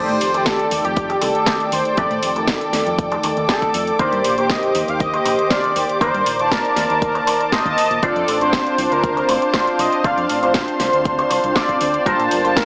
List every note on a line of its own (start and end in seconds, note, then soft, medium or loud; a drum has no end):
0.00 0.31 D#3 medium
0.00 0.31 A3 medium
0.00 0.32 G4 loud
0.00 3.96 A4 medium
0.00 0.48 C5 loud
0.00 0.31 D5 medium
0.00 3.96 G5 medium
0.00 10.01 D6 medium
0.09 0.17 A2 loud
0.09 closed hi-hat soft
0.21 0.51 F1 medium
0.21 muted clean electric guitar stroke soft
0.21 open hi-hat loud
0.33 1.95 D#3 medium
0.33 1.94 A3 medium
0.33 1.96 G4 loud
0.33 1.95 D5 medium
0.33 muted clean electric guitar stroke medium
0.33 closed hi-hat soft
0.46 0.84 A4 loud
0.46 kick loud
0.46 snare loud
0.46 closed hi-hat medium
0.59 closed hi-hat soft
0.71 0.80 D#2 loud
0.71 open hi-hat loud
0.84 1.14 F2 loud
0.84 1.20 G4 loud
0.84 muted clean electric guitar stroke soft
0.84 closed hi-hat soft
0.96 kick loud
0.96 closed hi-hat medium
1.09 muted clean electric guitar stroke loud
1.09 closed hi-hat soft
1.21 1.30 C2 loud
1.21 1.69 A4 loud
1.21 muted clean electric guitar stroke loud
1.21 open hi-hat loud
1.35 muted clean electric guitar stroke soft
1.35 closed hi-hat soft
1.46 1.72 D4 medium
1.46 1.72 D#4 medium
1.46 1.72 G4 medium
1.46 1.73 A4 medium
1.46 kick loud
1.46 snare loud
1.46 closed hi-hat medium
1.60 closed hi-hat soft
1.72 1.80 D#2 medium
1.72 1.96 C5 loud
1.72 open hi-hat loud
1.85 closed hi-hat soft
1.97 2.06 F2 loud
1.97 2.33 D#3 medium
1.97 2.33 A3 medium
1.97 2.11 D4 loud
1.97 2.11 D#4 loud
1.97 2.11 G4 medium
1.97 2.11 A4 loud
1.97 2.33 C5 medium
1.97 2.33 D5 medium
1.97 2.45 D5 loud
1.97 kick loud
1.97 closed hi-hat medium
2.11 2.18 A2 loud
2.11 closed hi-hat soft
2.23 2.53 F1 medium
2.23 muted clean electric guitar stroke soft
2.23 open hi-hat loud
2.35 3.97 D#3 medium
2.35 3.96 A3 medium
2.35 3.97 A4 medium
2.35 3.97 D5 medium
2.35 muted clean electric guitar stroke medium
2.35 closed hi-hat soft
2.48 muted clean electric guitar stroke soft
2.48 kick loud
2.48 snare loud
2.48 closed hi-hat medium
2.61 closed hi-hat soft
2.73 2.82 D#2 loud
2.73 snare medium
2.73 open hi-hat loud
2.86 3.16 F2 loud
2.86 muted clean electric guitar stroke soft
2.86 closed hi-hat soft
2.99 kick loud
2.99 closed hi-hat medium
3.12 muted clean electric guitar stroke loud
3.12 closed hi-hat soft
3.23 3.32 D#2 medium
3.23 muted clean electric guitar stroke medium
3.23 open hi-hat loud
3.37 3.44 D#2 medium
3.37 muted clean electric guitar stroke soft
3.37 closed hi-hat soft
3.49 3.74 D4 medium
3.49 3.74 D#4 medium
3.49 3.74 G4 medium
3.49 3.74 A4 medium
3.49 3.97 A4 loud
3.49 kick loud
3.49 snare loud
3.49 closed hi-hat medium
3.62 kick medium
3.62 closed hi-hat soft
3.74 3.90 F2 loud
3.74 open hi-hat loud
3.87 closed hi-hat soft
3.99 4.07 D#2 loud
3.99 4.35 D#3 medium
3.99 4.35 A#3 medium
3.99 4.13 D4 loud
3.99 4.13 D#4 loud
3.99 4.35 G4 loud
3.99 4.13 A#4 medium
3.99 7.99 C5 medium
3.99 4.52 C5 loud
3.99 4.13 C5 loud
3.99 4.35 D5 medium
3.99 kick loud
3.99 closed hi-hat medium
4.13 4.20 G2 loud
4.13 closed hi-hat soft
4.24 4.55 A#1 medium
4.24 muted clean electric guitar stroke soft
4.24 open hi-hat loud
4.37 5.99 D#3 medium
4.37 5.98 A#3 loud
4.37 5.99 G4 loud
4.37 5.98 C5 medium
4.37 muted clean electric guitar stroke medium
4.37 closed hi-hat soft
4.50 4.91 D#5 loud
4.50 muted clean electric guitar stroke soft
4.50 kick loud
4.50 snare loud
4.50 closed hi-hat medium
4.63 closed hi-hat soft
4.75 4.83 D#2 loud
4.75 open hi-hat loud
4.88 5.18 D#2 loud
4.88 5.00 F5 loud
4.88 muted clean electric guitar stroke soft
4.88 closed hi-hat soft
5.00 5.48 D#5 loud
5.00 kick loud
5.00 closed hi-hat medium
5.13 muted clean electric guitar stroke loud
5.13 closed hi-hat soft
5.25 5.34 A#1 loud
5.25 muted clean electric guitar stroke medium
5.25 open hi-hat loud
5.38 muted clean electric guitar stroke soft
5.38 closed hi-hat soft
5.50 5.76 D4 medium
5.50 5.76 D#4 medium
5.50 5.76 A#4 medium
5.50 5.76 C5 medium
5.50 5.98 D5 loud
5.50 kick loud
5.50 snare loud
5.50 closed hi-hat medium
5.64 closed hi-hat soft
5.76 5.84 D#2 medium
5.76 open hi-hat loud
5.89 closed hi-hat soft
6.01 6.09 D#2 loud
6.01 6.37 D#3 medium
6.01 6.36 A#3 medium
6.01 6.14 D4 loud
6.01 6.14 D#4 loud
6.01 6.14 A#4 medium
6.01 6.37 A#4 medium
6.01 6.14 C5 loud
6.01 6.54 C5 loud
6.01 6.37 D5 medium
6.01 kick loud
6.01 closed hi-hat medium
6.14 6.22 G2 loud
6.14 closed hi-hat soft
6.26 6.57 A#1 medium
6.26 muted clean electric guitar stroke soft
6.26 open hi-hat loud
6.39 7.63 D#3 medium
6.39 7.63 A#3 medium
6.39 7.63 D5 medium
6.39 7.64 A5 medium
6.39 muted clean electric guitar stroke medium
6.39 closed hi-hat soft
6.51 7.52 A#4 loud
6.51 muted clean electric guitar stroke soft
6.51 kick loud
6.51 snare loud
6.51 closed hi-hat medium
6.65 closed hi-hat soft
6.76 6.85 D#2 loud
6.76 snare medium
6.76 open hi-hat loud
6.90 7.20 D#2 loud
6.90 muted clean electric guitar stroke soft
6.90 closed hi-hat soft
7.02 kick loud
7.02 closed hi-hat medium
7.15 muted clean electric guitar stroke loud
7.15 closed hi-hat soft
7.27 muted clean electric guitar stroke medium
7.27 open hi-hat loud
7.40 muted clean electric guitar stroke soft
7.40 closed hi-hat soft
7.52 7.78 D4 medium
7.52 7.78 D#4 medium
7.52 7.78 A#4 medium
7.52 7.78 C5 medium
7.52 8.04 D#5 loud
7.52 kick loud
7.52 snare loud
7.52 closed hi-hat medium
7.65 7.73 D#2 medium
7.65 8.00 D#3 medium
7.65 8.00 A#3 medium
7.65 8.00 D#5 medium
7.65 8.00 A5 loud
7.65 kick medium
7.65 closed hi-hat soft
7.78 muted fingered electric bass stroke soft
7.78 open hi-hat loud
7.90 7.98 A#1 medium
7.90 closed hi-hat soft
8.02 8.11 D2 loud
8.02 8.38 C4 medium
8.02 8.38 D4 medium
8.02 8.16 D4 loud
8.02 8.38 F4 medium
8.02 8.16 F4 loud
8.02 8.38 A4 loud
8.02 8.16 A4 medium
8.02 12.02 C5 medium
8.02 8.16 C5 loud
8.02 8.54 D5 loud
8.02 12.65 F5 medium
8.02 12.02 A5 medium
8.02 kick loud
8.02 closed hi-hat medium
8.16 8.23 F2 loud
8.16 closed hi-hat soft
8.28 8.58 A1 medium
8.28 muted clean electric guitar stroke soft
8.28 open hi-hat loud
8.40 10.01 C4 loud
8.40 10.02 D4 medium
8.40 10.02 F4 medium
8.40 10.02 C5 loud
8.40 muted clean electric guitar stroke medium
8.40 closed hi-hat soft
8.53 8.93 C5 loud
8.53 muted clean electric guitar stroke soft
8.53 kick loud
8.53 snare loud
8.53 closed hi-hat medium
8.67 closed hi-hat soft
8.78 8.86 C2 loud
8.78 open hi-hat loud
8.91 9.21 D2 loud
8.91 9.31 A#4 loud
8.91 muted clean electric guitar stroke soft
8.91 closed hi-hat soft
9.04 kick loud
9.04 closed hi-hat medium
9.16 muted clean electric guitar stroke loud
9.16 closed hi-hat soft
9.29 9.37 A1 loud
9.29 9.81 C5 loud
9.29 muted clean electric guitar stroke loud
9.29 open hi-hat loud
9.42 muted clean electric guitar stroke soft
9.42 closed hi-hat soft
9.53 9.79 D4 medium
9.53 9.79 F4 medium
9.53 9.79 A4 medium
9.53 9.79 C5 medium
9.53 kick loud
9.53 snare loud
9.53 closed hi-hat medium
9.67 closed hi-hat soft
9.79 9.87 C2 medium
9.79 10.07 D#5 loud
9.79 open hi-hat loud
9.93 closed hi-hat soft
10.04 10.12 D2 loud
10.04 10.40 C4 medium
10.04 10.18 D4 loud
10.04 10.40 D4 medium
10.04 10.18 F4 medium
10.04 10.40 F4 medium
10.04 10.18 A4 loud
10.04 10.18 C5 loud
10.04 10.40 D5 medium
10.04 10.55 F5 loud
10.04 12.04 C6 medium
10.04 kick loud
10.04 closed hi-hat medium
10.17 10.25 F2 loud
10.17 closed hi-hat soft
10.29 10.60 A1 medium
10.29 muted clean electric guitar stroke soft
10.29 open hi-hat loud
10.42 12.03 C4 medium
10.42 12.03 D4 medium
10.42 12.03 F4 medium
10.42 12.04 C5 loud
10.42 muted clean electric guitar stroke loud
10.42 closed hi-hat soft
10.54 muted clean electric guitar stroke soft
10.54 kick loud
10.54 snare loud
10.54 closed hi-hat medium
10.68 closed hi-hat soft
10.80 10.88 C2 loud
10.80 snare medium
10.80 open hi-hat loud
10.93 11.23 D2 loud
10.93 muted clean electric guitar stroke soft
10.93 closed hi-hat soft
11.05 kick loud
11.05 closed hi-hat medium
11.18 muted clean electric guitar stroke loud
11.18 closed hi-hat soft
11.30 11.39 C2 medium
11.30 muted clean electric guitar stroke loud
11.30 open hi-hat loud
11.44 11.51 C2 loud
11.44 muted clean electric guitar stroke soft
11.44 closed hi-hat soft
11.55 11.81 D4 medium
11.55 11.81 F4 medium
11.55 11.81 A4 medium
11.55 11.81 C5 medium
11.55 12.08 D5 loud
11.55 kick loud
11.55 snare loud
11.55 closed hi-hat medium
11.69 kick medium
11.69 closed hi-hat soft
11.81 11.97 D2 loud
11.81 open hi-hat loud
11.94 closed hi-hat soft
12.05 12.14 G2 loud
12.05 12.41 A#3 medium
12.05 12.41 D4 medium
12.05 12.19 F4 loud
12.05 12.41 F4 medium
12.05 12.19 G4 loud
12.05 12.19 A4 medium
12.05 12.19 A#4 loud
12.05 12.58 C5 loud
12.05 12.65 G5 medium
12.05 12.42 A5 loud
12.05 kick loud
12.05 closed hi-hat medium
12.20 12.27 A#2 loud
12.20 closed hi-hat soft
12.31 12.62 G1 medium
12.31 muted clean electric guitar stroke soft
12.31 open hi-hat loud
12.44 12.65 A#3 loud
12.44 12.65 D4 medium
12.44 12.65 F4 medium
12.44 12.65 A5 loud
12.44 muted clean electric guitar stroke medium
12.44 closed hi-hat soft
12.56 12.65 A#4 loud
12.56 muted clean electric guitar stroke soft
12.56 kick loud
12.56 snare loud
12.56 closed hi-hat medium